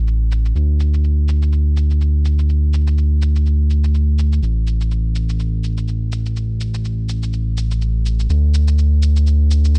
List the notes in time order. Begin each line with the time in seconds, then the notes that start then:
Already playing: A1
0.07 shaker
0.32 shaker
0.45 shaker
0.55 D2, shaker
0.80 shaker
0.94 shaker
1.04 shaker
1.28 shaker
1.42 shaker
1.52 shaker
1.77 shaker
1.90 shaker
2.01 shaker
2.25 shaker
2.39 shaker
2.49 shaker
2.73 shaker
2.87 shaker
2.98 shaker
3.22 shaker
3.36 shaker
3.46 shaker
3.70 shaker
3.84 shaker
3.94 shaker
4.19 shaker
4.32 shaker
4.42 A1, shaker
4.67 shaker
4.81 shaker
4.91 shaker
5.15 shaker
5.29 shaker
5.40 shaker
5.64 shaker
5.78 shaker
5.88 shaker
6.12 shaker
6.26 shaker
6.36 shaker
6.61 shaker
6.74 shaker
6.85 shaker
7.09 shaker
7.23 shaker
7.33 shaker
7.57 shaker
7.71 shaker
7.82 shaker
8.06 shaker
8.20 shaker
8.30 D2, shaker
8.54 shaker
8.68 shaker
8.78 shaker
9.02 shaker
9.16 shaker
9.27 shaker
9.51 shaker
9.65 shaker
9.75 shaker